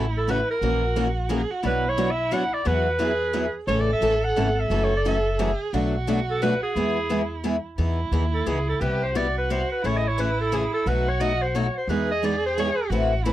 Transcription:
Already playing: upright bass A1, violin E4
0.17 clarinet A4
0.28 steel-string acoustic guitar C#3 E3 A3 C#4 F#4 A4, clarinet B4
0.50 clarinet A#4
0.61 upright bass A#1, steel-string acoustic guitar E3 A#3 C#4 F#4 A#4, violin F#4
0.96 steel-string acoustic guitar E3 A#3 C#4 F#4 A#4
1.29 steel-string acoustic guitar E3 A#3 C#4 F#4 A#4, violin G#4
1.51 violin F#4
1.63 upright bass B1, steel-string acoustic guitar B2 F#3 B3 D4 F#4 C#5, violin E4, clarinet B4
1.89 clarinet C#5
1.97 steel-string acoustic guitar B2 F#3 B3 D4 F#4 C#5
2.11 clarinet E5
2.31 steel-string acoustic guitar B2 F#3 B3 D4 F#4 C#5, clarinet F#5
2.53 clarinet D5
2.65 upright bass E2, steel-string acoustic guitar E3 F#3 B3 E4 G#4, violin F#4, clarinet B4
2.99 steel-string acoustic guitar E3 F#3 B3 E4 G#4, violin G#4
3.33 steel-string acoustic guitar E3 F#3 B3 E4 G#4
3.67 upright bass A1, steel-string acoustic guitar C#3 E3 A3 C#4 E4 A4, violin A4, clarinet C#5
3.80 clarinet D5
3.93 clarinet E5
4.01 upright bass A1, steel-string acoustic guitar C#3 E3 A3 C#4 E4 A4
4.24 clarinet F#5
4.36 upright bass G#1, steel-string acoustic guitar C#3 E3 A3 C#4 E4 A4
4.60 clarinet E5
4.70 upright bass F#1, steel-string acoustic guitar C#3 E3 F#3 A3 C#4 E4 F#4 A4, violin A4
4.84 clarinet C#5
4.96 clarinet D5
5.05 steel-string acoustic guitar C#3 E3 F#3 A3 C#4 E4 F#4 A4, clarinet E5
5.39 steel-string acoustic guitar C#3 E3 F#3 A3 C#4 E4 F#4 A4, violin G#4
5.73 upright bass B1, steel-string acoustic guitar B2 F#3 A3 D4 F#4 B4, violin F#4
6.07 steel-string acoustic guitar B2 F#3 A3 D4 F#4 B4
6.30 clarinet A4
6.42 steel-string acoustic guitar B2 F#3 A3 D4 F#4 B4, clarinet B4
6.63 clarinet G#4
6.76 upright bass E2, steel-string acoustic guitar E3 G#3 B3 E4 G#4, violin E4
7.09 steel-string acoustic guitar E3 G#3 B3 E4 G#4
7.44 steel-string acoustic guitar E3 G#3 B3 E4 G#4
7.78 upright bass E2, steel-string acoustic guitar E3 B3 D#4 G#4, violin E4
8.12 upright bass D#2, steel-string acoustic guitar E3 B3 D#4 G#4
8.34 clarinet A4
8.46 upright bass C#2, steel-string acoustic guitar E3 B3 D#4 G#4, clarinet G#4
8.69 clarinet A4
8.80 upright bass C2, steel-string acoustic guitar C3 G3 B3 E4 G4, violin G4, clarinet B4
9.03 clarinet C5
9.15 steel-string acoustic guitar C3 G3 B3 E4 G4, violin F#4, clarinet D5
9.38 clarinet B4
9.50 steel-string acoustic guitar C3 G3 B3 E4 G4, clarinet C5
9.72 clarinet B4
9.83 upright bass A1, steel-string acoustic guitar C#3 E3 A3 C#4 G#4, violin E4, clarinet C#5
9.97 clarinet D#5
10.08 clarinet C#5
10.18 steel-string acoustic guitar C#3 E3 A3 C#4 G#4, clarinet B4
10.41 clarinet A4
10.52 steel-string acoustic guitar C#3 E3 A3 C#4 G#4, clarinet G#4
10.74 clarinet A4
10.86 upright bass B1, steel-string acoustic guitar B2 F#3 A3 D#4 F#4, violin F#4, clarinet B4
11.08 clarinet C#5
11.20 steel-string acoustic guitar B2 F#3 A3 D#4 F#4, clarinet D#5
11.42 clarinet C5
11.55 steel-string acoustic guitar B2 F#3 A3 D#4 F#4, clarinet C#5
11.77 clarinet C5
11.88 upright bass E2, steel-string acoustic guitar E3 G#3 B3 D#4 G#4, violin G#4, clarinet B4
12.11 clarinet D#5
12.23 steel-string acoustic guitar E3 G#3 B3 D#4 G#4, clarinet D5
12.46 clarinet C5
12.58 steel-string acoustic guitar E3 G#3 B3 D#4 G#4, clarinet C#5
12.90 upright bass A1, steel-string acoustic guitar E3 A3 C4 E4 B4, violin F#4
13.25 steel-string acoustic guitar E3 A3 C4 E4 B4, violin E4

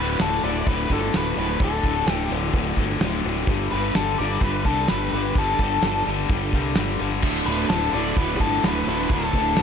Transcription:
Already playing: fingered electric bass D1, distorted electric guitar D2 A2 D3
0.00 lead electric guitar B4
0.19 fingered electric bass D1, distorted electric guitar D2 A2 D3, lead electric guitar A4, snare, open hi-hat, tambourine
0.43 fingered electric bass D1, distorted electric guitar D2 A2 D3, lead electric guitar D5, open hi-hat
0.66 fingered electric bass D1, distorted electric guitar D2 A2 D3, lead electric guitar B4, kick, open hi-hat
0.89 fingered electric bass G1, distorted electric guitar D2 A2 D3, lead electric guitar A4, kick, open hi-hat
1.13 fingered electric bass D1, distorted electric guitar D2 A2 D3, lead electric guitar B4, snare, open hi-hat, tambourine
1.26 snare
1.36 fingered electric bass D1, distorted electric guitar D2 A2 D3, lead electric guitar B4, open hi-hat
1.60 fingered electric bass D1, distorted electric guitar D2 A2 D3, kick, open hi-hat
1.64 lead electric guitar A4
1.83 fingered electric bass D1, distorted electric guitar D2 A2 D3, kick, open hi-hat
2.06 fingered electric bass D1, distorted electric guitar D2 A2 D3, snare, open hi-hat, tambourine
2.12 lead electric guitar G4
2.30 fingered electric bass D1, distorted electric guitar D2 A2 D3, open hi-hat
2.53 fingered electric bass D1, distorted electric guitar D2 A2 D3, kick, open hi-hat
2.76 fingered electric bass G1, distorted electric guitar D2 A2 D3, kick, open hi-hat
3.00 fingered electric bass D1, distorted electric guitar D2 A2 D3, snare, open hi-hat, tambourine
3.12 snare
3.24 fingered electric bass D1, distorted electric guitar D2 A2 D3, open hi-hat
3.47 fingered electric bass G1, distorted electric guitar G2 D3 G3, kick, open hi-hat
3.71 fingered electric bass G1, distorted electric guitar G2 D3 G3, lead electric guitar B4, open hi-hat
3.94 fingered electric bass G1, distorted electric guitar G2 D3 G3, lead electric guitar A4, snare, open hi-hat, tambourine
4.18 fingered electric bass G1, distorted electric guitar G2 D3 G3, lead electric guitar D5, open hi-hat
4.40 fingered electric bass G1, distorted electric guitar G2 D3 G3, lead electric guitar B4, kick, open hi-hat
4.65 fingered electric bass C2, distorted electric guitar G2 D3 G3, lead electric guitar A4, kick, open hi-hat
4.88 fingered electric bass G1, distorted electric guitar G2 D3 G3, lead electric guitar B4, snare, open hi-hat, tambourine
5.12 fingered electric bass G1, distorted electric guitar G2 D3 G3, lead electric guitar B4, open hi-hat
5.35 fingered electric bass G1, distorted electric guitar G2 D3 G3, lead electric guitar A4, kick, open hi-hat
5.59 fingered electric bass G1, distorted electric guitar G2 D3 G3, kick, open hi-hat
5.82 fingered electric bass G1, distorted electric guitar G2 D3 G3, snare, open hi-hat, tambourine
6.05 fingered electric bass G1, distorted electric guitar G2 D3 G3, open hi-hat
6.29 fingered electric bass G1, distorted electric guitar G2 D3 G3, kick, open hi-hat
6.52 fingered electric bass C2, distorted electric guitar G2 D3 G3, kick, open hi-hat
6.75 fingered electric bass G1, distorted electric guitar G2 D3 G3, snare, open hi-hat, tambourine
6.89 snare
7.00 fingered electric bass G1, distorted electric guitar G2 D3 G3, open hi-hat
7.22 fingered electric bass D1, distorted electric guitar D2 A2 D3, kick, crash
7.46 fingered electric bass D1, distorted electric guitar D2 A2 D3, lead electric guitar B4, open hi-hat
7.69 fingered electric bass D1, distorted electric guitar D2 A2 D3, lead electric guitar A4, snare, open hi-hat, tambourine
7.92 fingered electric bass D1, distorted electric guitar D2 A2 D3, lead electric guitar D5, open hi-hat
8.16 fingered electric bass D1, distorted electric guitar D2 A2 D3, lead electric guitar B4, kick, open hi-hat
8.39 fingered electric bass G1, distorted electric guitar D2 A2 D3, lead electric guitar A4, kick, open hi-hat
8.63 fingered electric bass D1, distorted electric guitar D2 A2 D3, lead electric guitar B4, snare, open hi-hat, tambourine
8.87 fingered electric bass D1, distorted electric guitar D2 A2 D3, lead electric guitar B4, open hi-hat
9.10 fingered electric bass D1, distorted electric guitar D2 A2 D3, lead electric guitar A4, kick, open hi-hat
9.33 fingered electric bass D1, distorted electric guitar D2 A2 D3, kick, open hi-hat
9.56 fingered electric bass D1, distorted electric guitar D2 A2 D3, snare, open hi-hat, tambourine

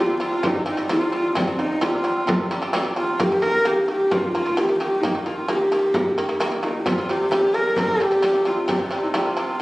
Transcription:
Already playing: shamisen C3
0.00 shamisen G3, horsehead fiddle F4
0.20 shamisen C3 G3, horsehead fiddle F4
0.43 shamisen C3 G3, horsehead fiddle D#4, frame drum
0.66 shamisen C3 G3, frame drum
0.70 horsehead fiddle D#4
0.77 shamisen C3 G3, frame drum
0.89 shamisen C3 G3, horsehead fiddle F4, frame drum
1.01 shamisen C3 G3
1.12 shamisen C3 G3, horsehead fiddle F4
1.35 shamisen C3 G3, horsehead fiddle C4, frame drum
1.47 shamisen C3 G3
1.58 shamisen C3 G3, horsehead fiddle D#4
1.71 frame drum
1.81 shamisen C3 G3, horsehead fiddle F4, frame drum
2.04 shamisen C3 G3
2.27 shamisen C3 G3, frame drum
2.51 shamisen C3 G3, frame drum
2.62 shamisen C3 G3, frame drum
2.73 shamisen C3 G3, frame drum
2.85 shamisen C3 G3
2.96 shamisen C3 G3, horsehead fiddle F4
3.20 shamisen D#3 A#3, horsehead fiddle G4, frame drum
3.31 shamisen D#3 A#3
3.42 shamisen D#3 A#3, horsehead fiddle A#4
3.55 frame drum
3.65 shamisen D#3 A#3, horsehead fiddle G4, frame drum
3.88 shamisen D#3 A#3, horsehead fiddle G4
4.11 shamisen D#3 A#3, horsehead fiddle F4, frame drum
4.35 shamisen D#3 A#3, horsehead fiddle F4, frame drum
4.46 shamisen D#3 A#3, frame drum
4.57 shamisen D#3 A#3, horsehead fiddle G4, frame drum
4.69 shamisen D#3 A#3
4.80 shamisen D#3 A#3, horsehead fiddle G4
5.01 shamisen D#3 A#3, horsehead fiddle D#4, frame drum
5.15 shamisen D#3 A#3
5.26 shamisen D#3 A#3, horsehead fiddle F4
5.37 frame drum
5.48 shamisen D#3 A#3, horsehead fiddle G4, frame drum
5.72 shamisen D#3 A#3
5.94 shamisen D#3 A#3, frame drum
6.17 shamisen D#3 A#3, frame drum
6.28 shamisen D#3 A#3, frame drum
6.40 shamisen D#3 A#3, frame drum
6.52 shamisen D#3 A#3
6.63 shamisen D#3 A#3, horsehead fiddle D#4, frame drum
6.80 horsehead fiddle G4
6.86 shamisen C3 G3, horsehead fiddle F4, frame drum
6.98 shamisen C3 G3
7.09 shamisen C3 G3, horsehead fiddle G4
7.20 frame drum
7.31 shamisen C3 G3, horsehead fiddle G4, frame drum
7.54 shamisen C3 G3, horsehead fiddle A#4
7.76 shamisen C3 G3, horsehead fiddle A#4, frame drum
8.00 shamisen C3 G3, horsehead fiddle G4, frame drum
8.11 shamisen C3 G3, frame drum
8.22 shamisen C3 G3, frame drum
8.34 shamisen C3 G3
8.45 shamisen C3 G3, horsehead fiddle F4
8.68 shamisen C3 G3, horsehead fiddle G4, frame drum
8.79 shamisen C3 G3, horsehead fiddle G4
8.91 shamisen C3 G3
9.03 horsehead fiddle D#4
9.14 shamisen C3 G3, horsehead fiddle F4, frame drum
9.37 shamisen C3 G3

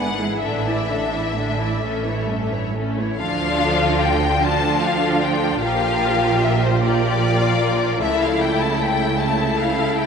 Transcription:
Already playing: double bass section G#1, cello section G#2, viola section D3 B3, violin section D4 B4 F#5
0.18 viola section E3 G#3, violin section E4 G#4
0.42 double bass section A1, cello section A2, viola section D3 D4, violin section D4 A4 E5
0.66 viola section E3 E4, violin section E4 D5
0.89 viola section D3 D4, violin section D4 A4
1.13 viola section E3 E4, violin section E4 D5
1.36 viola section D3 D4, violin section D4 A4
1.58 viola section E3 E4, violin section E4 D5
1.81 double bass section A1, cello section A2, viola section A3 C#4, violin section C#4 A4
2.04 viola section E3 A3, violin section E4 C#5
2.27 cello section G2, viola section A3 C#4, violin section C#4 A4
2.52 viola section E3 A3, violin section E4 C#5
2.74 cello section A2, viola section A3 C#4, violin section C#4 A4
2.98 viola section E3 A3, violin section E4 C#5
3.18 double bass section D2, cello section D3, viola section F3 D4, violin section F4 A4 F5
4.00 violin section G5
4.41 viola section F3 D4, violin section F4 A4 A5
4.82 violin section F5
5.23 violin section G5
5.63 double bass section A#1, cello section A#2, viola section F3 F4, violin section G4 A#4 F5
6.43 violin section E5
6.64 violin section C5
6.83 viola section F3 F4, violin section G4 A#4 D5
7.41 violin section F4
8.00 double bass section C#2, cello section C#3, viola section A3 E4, violin section E4 A4 E5
8.21 violin section F5
8.40 violin section G5
8.60 violin section A5
8.80 violin section G5
9.18 viola section A3 E4, violin section E4 A4 A5
9.57 violin section F5
9.98 violin section G5

